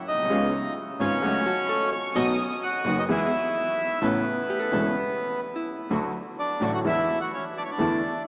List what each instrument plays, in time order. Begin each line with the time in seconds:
0.07 double bass B1, bandoneon D#4 D#5
0.14 grand piano A#1
0.19 grand piano B1
0.24 grand piano C2
0.29 grand piano C#2 C#3 G#3 B3 F4, double bass C#2, string section B3 C#4 F4
0.99 grand piano G#1 G#2 C#3 G#3 B3 F4, double bass G#1, string section B3 C#4 F4, bandoneon C#4 C#5
1.22 grand piano C#2 C#3 F#3 A3 F#4, double bass C#2, string section A3 C#4 F#4
1.46 hollow-body jazz guitar F#4, violin section A5
1.56 violin section B5
1.68 hollow-body jazz guitar A4, violin section C#6
1.91 hollow-body jazz guitar C#5, violin section C#6
2.15 grand piano B1 B2 D#3 F#3 B3 F#4, double bass B1, string section B3 D#4 F#4, hollow-body jazz guitar D#5, violin section D#6
2.63 bandoneon F#4 F#5
2.84 grand piano F#1 F#2 D#3 F#3 B3 F#4, double bass F#1, string section B3 D#4 F#4
2.99 bandoneon D#4 D#5
3.09 double bass E2, grand piano E2 E3 G#3 B3 G#4, string section B3 E4 G#4, bandoneon E4 E5
4.01 grand piano A1 A2 C#3 A3 B3 E4, double bass A1, string section B3 C#4 A4, bandoneon B3 B4
4.50 hollow-body jazz guitar G4
4.59 hollow-body jazz guitar A4
4.71 grand piano E1 E2 C#3 A3 B3 E4, double bass E1, string section B3 C#4 A4
5.56 hollow-body jazz guitar E4
5.90 grand piano D2 D3 F#3 A3 F#4, double bass D2, string section A3 D4 F#4
6.39 bandoneon D4 D5
6.61 double bass A1, grand piano A1 A2 D3 F#3 A3 F#4, string section A3 D4 F#4
6.74 bandoneon F#4 F#5
6.84 double bass E2, grand piano E2 D3 E3 G#3 B3 E4, string section G#3 D4 E4, bandoneon E4 E5
7.21 bandoneon F#4 F#5
7.34 bandoneon C#4 C#5
7.57 bandoneon D4 D5
7.64 bandoneon C#5
7.71 bandoneon D4 D5
7.79 double bass E2, grand piano E2 D3 E3 A3 E4, string section A3 D4 E4